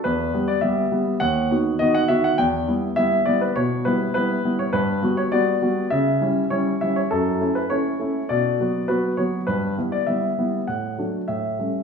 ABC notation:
X:1
M:4/4
L:1/16
Q:1/4=101
K:Edor
V:1 name="Grand piano"
B3 d e4 f4 ^d f e f | g4 e2 d B c2 B2 B3 c | B3 c d4 e4 c2 e c | A3 B c4 d4 B2 c2 |
B3 d e4 f4 e4 |]
V:2 name="Grand piano"
E,,2 [G,B,G]2 [G,B,G]2 [G,B,G]2 ^D,,2 [^D,B,F]2 [D,B,F]2 [D,B,F]2 | E,,2 [G,B,E]2 [G,B,E]2 [G,B,E]2 B,,2 [G,B,E]2 [G,B,E]2 [G,B,E]2 | G,,2 [G,B,F]2 [G,B,F]2 [G,B,F]2 C,2 [G,CE]2 [G,CE]2 [G,CE]2 | F,,2 [A,CE]2 [A,CE]2 [A,CE]2 B,,2 [F,B,F]2 [F,B,F]2 [F,B,F]2 |
G,,2 [G,B,E]2 [G,B,E]2 [G,B,E]2 A,,2 [F,A,D]2 A,,2 [G,A,C]2 |]